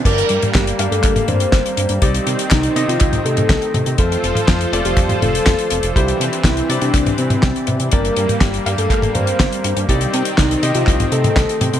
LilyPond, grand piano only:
\new Staff \with { instrumentName = "Grand piano" } { \time 4/4 \key g \minor \tempo 4 = 122 <bes d' g' d''>4. <bes d' g' f''>2~ <bes d' g' f''>8 | <c' ees' g' d''>4. <c' ees' g' ees''>2~ <c' ees' g' ees''>8 | <a c' f' c''>4. <a c' f' d''>2~ <a c' f' d''>8 | <g d' e' c''>4. <g d' e' d''>2~ <g d' e' d''>8 |
<bes d' g' d''>4. <bes d' g' f''>2~ <bes d' g' f''>8 | <c' ees' g' d''>4. <c' ees' g' ees''>2~ <c' ees' g' ees''>8 | }